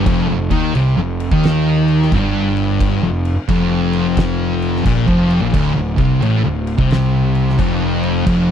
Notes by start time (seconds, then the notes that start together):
0.06 F1 F2, kick, crash
0.28 F1 F2
0.50 D#2 D#3, kick, crash
0.75 C2 C3, crash
0.97 F1 F2
1.20 crash
1.32 D#2 D#3, kick
1.44 snare, crash
1.88 crash
2.02 snare
2.12 G1 G2, kick, crash
2.57 crash
2.80 kick, crash
3.03 F1 F2
3.25 crash
3.49 F1 F2, kick, crash
3.93 crash
4.17 kick, snare, crash
4.62 crash
4.76 snare
4.85 A#1 A#2, kick, crash
5.08 F1 F2, kick
5.30 crash
5.42 A#1 A#2
5.54 D1 D2, kick, crash
5.76 D1 D2
5.98 C2 C3, kick, crash
6.22 A1 A2, crash
6.45 D1 D2
6.67 crash
6.78 C2 C3, kick
6.91 snare, crash
7.35 crash
7.50 snare
7.59 F1 F2, kick, crash
8.03 crash
8.26 F1 F2, kick, crash